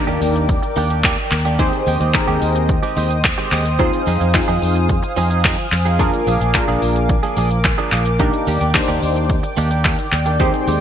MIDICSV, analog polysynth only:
0, 0, Header, 1, 2, 480
1, 0, Start_track
1, 0, Tempo, 550459
1, 1387, Time_signature, 4, 2, 24, 8
1, 9422, End_track
2, 0, Start_track
2, 0, Title_t, "Analog polysynth"
2, 0, Program_c, 0, 90
2, 0, Note_on_c, 0, 58, 87
2, 0, Note_on_c, 0, 62, 78
2, 0, Note_on_c, 0, 63, 76
2, 0, Note_on_c, 0, 67, 79
2, 0, Note_on_c, 0, 70, 96
2, 479, Note_off_c, 0, 58, 0
2, 479, Note_off_c, 0, 62, 0
2, 480, Note_off_c, 0, 63, 0
2, 480, Note_off_c, 0, 67, 0
2, 481, Note_off_c, 0, 70, 0
2, 1386, Note_on_c, 0, 60, 90
2, 1386, Note_on_c, 0, 63, 77
2, 1388, Note_on_c, 0, 67, 77
2, 1389, Note_on_c, 0, 68, 81
2, 1390, Note_on_c, 0, 72, 96
2, 1653, Note_off_c, 0, 60, 0
2, 1653, Note_off_c, 0, 63, 0
2, 1654, Note_off_c, 0, 67, 0
2, 1655, Note_off_c, 0, 68, 0
2, 1655, Note_off_c, 0, 72, 0
2, 1865, Note_on_c, 0, 60, 88
2, 1865, Note_on_c, 0, 63, 79
2, 1866, Note_on_c, 0, 67, 78
2, 1868, Note_on_c, 0, 68, 81
2, 1869, Note_on_c, 0, 70, 94
2, 2399, Note_off_c, 0, 60, 0
2, 2399, Note_off_c, 0, 63, 0
2, 2399, Note_off_c, 0, 67, 0
2, 2400, Note_off_c, 0, 68, 0
2, 2401, Note_off_c, 0, 70, 0
2, 3305, Note_on_c, 0, 60, 86
2, 3305, Note_on_c, 0, 63, 79
2, 3307, Note_on_c, 0, 65, 77
2, 3308, Note_on_c, 0, 68, 79
2, 3309, Note_on_c, 0, 72, 96
2, 3572, Note_off_c, 0, 60, 0
2, 3573, Note_off_c, 0, 63, 0
2, 3573, Note_off_c, 0, 65, 0
2, 3574, Note_off_c, 0, 68, 0
2, 3575, Note_off_c, 0, 72, 0
2, 3785, Note_on_c, 0, 60, 86
2, 3786, Note_on_c, 0, 63, 81
2, 3788, Note_on_c, 0, 65, 81
2, 3789, Note_on_c, 0, 68, 80
2, 3789, Note_on_c, 0, 72, 93
2, 4319, Note_off_c, 0, 60, 0
2, 4319, Note_off_c, 0, 63, 0
2, 4320, Note_off_c, 0, 65, 0
2, 4321, Note_off_c, 0, 68, 0
2, 4321, Note_off_c, 0, 72, 0
2, 5225, Note_on_c, 0, 58, 84
2, 5225, Note_on_c, 0, 62, 80
2, 5227, Note_on_c, 0, 65, 78
2, 5228, Note_on_c, 0, 68, 77
2, 5229, Note_on_c, 0, 70, 92
2, 5492, Note_off_c, 0, 58, 0
2, 5493, Note_off_c, 0, 62, 0
2, 5493, Note_off_c, 0, 65, 0
2, 5494, Note_off_c, 0, 68, 0
2, 5495, Note_off_c, 0, 70, 0
2, 5705, Note_on_c, 0, 58, 92
2, 5706, Note_on_c, 0, 62, 83
2, 5707, Note_on_c, 0, 65, 81
2, 5708, Note_on_c, 0, 68, 79
2, 5709, Note_on_c, 0, 70, 98
2, 6239, Note_off_c, 0, 58, 0
2, 6239, Note_off_c, 0, 62, 0
2, 6240, Note_off_c, 0, 65, 0
2, 6240, Note_off_c, 0, 68, 0
2, 6241, Note_off_c, 0, 70, 0
2, 7144, Note_on_c, 0, 58, 86
2, 7146, Note_on_c, 0, 62, 82
2, 7147, Note_on_c, 0, 63, 79
2, 7148, Note_on_c, 0, 67, 80
2, 7149, Note_on_c, 0, 70, 95
2, 7412, Note_off_c, 0, 58, 0
2, 7413, Note_off_c, 0, 62, 0
2, 7413, Note_off_c, 0, 63, 0
2, 7414, Note_off_c, 0, 67, 0
2, 7414, Note_off_c, 0, 70, 0
2, 7624, Note_on_c, 0, 58, 89
2, 7625, Note_on_c, 0, 62, 81
2, 7626, Note_on_c, 0, 63, 81
2, 7627, Note_on_c, 0, 67, 78
2, 7629, Note_on_c, 0, 72, 96
2, 8158, Note_off_c, 0, 58, 0
2, 8159, Note_off_c, 0, 62, 0
2, 8159, Note_off_c, 0, 63, 0
2, 8160, Note_off_c, 0, 67, 0
2, 8161, Note_off_c, 0, 72, 0
2, 9065, Note_on_c, 0, 60, 87
2, 9066, Note_on_c, 0, 63, 80
2, 9067, Note_on_c, 0, 67, 80
2, 9068, Note_on_c, 0, 68, 75
2, 9069, Note_on_c, 0, 72, 98
2, 9332, Note_off_c, 0, 60, 0
2, 9333, Note_off_c, 0, 63, 0
2, 9334, Note_off_c, 0, 67, 0
2, 9334, Note_off_c, 0, 68, 0
2, 9334, Note_off_c, 0, 72, 0
2, 9422, End_track
0, 0, End_of_file